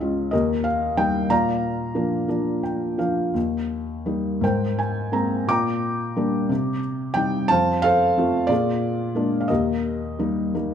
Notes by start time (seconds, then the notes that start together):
Already playing: C#2
0.00 G#3 C#4 F4
0.31 D#2 G4 A#4 D#5
0.64 F5
0.97 G3 A#3 D#4 G5
1.30 A#2 D5 F5 A#5
1.95 F3 A#3 D4
2.28 F3 A#3 D4
2.63 G5
2.98 F3 A#3 D4 F5
3.34 D#2
4.06 G3 A#3 D#4
4.41 G#2 A#4 C5 G5
4.79 G#5
5.12 G#3 A#3 C4 A#5
5.48 A#2 G5 A#5 D6
6.16 G3 A#3 D4
6.49 C3
7.14 G3 C4 D#4 G5
7.48 F2 C5 F5 A5
7.82 A4 C5 F5
8.18 A3 C4 F4
8.47 A#2 F4 G#4 D5
9.15 G#3 A#3 D4
9.41 F5
9.48 D#2 G4 A#4 D#5
10.19 G3 A#3 D#4
10.54 G3 A#3 D#4